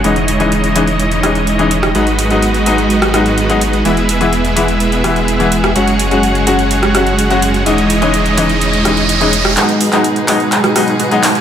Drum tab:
HH |xxxxxxxxxxxxxxxx|xxxxxxxxxxxxxxxx|xxxxxxxxxxxxxxxx|xxxxxxxxxxxxxxxx|
CP |----------------|----------------|----------------|----------------|
SD |----------r----r|---------rr-----|----------r----r|---------rr-----|

HH |xxxxxxxxxxxxxxxx|xxoxxxoxxxoxxxox|
CP |----------------|x--x--x-x-----x-|
SD |----------r----r|---------rr-----|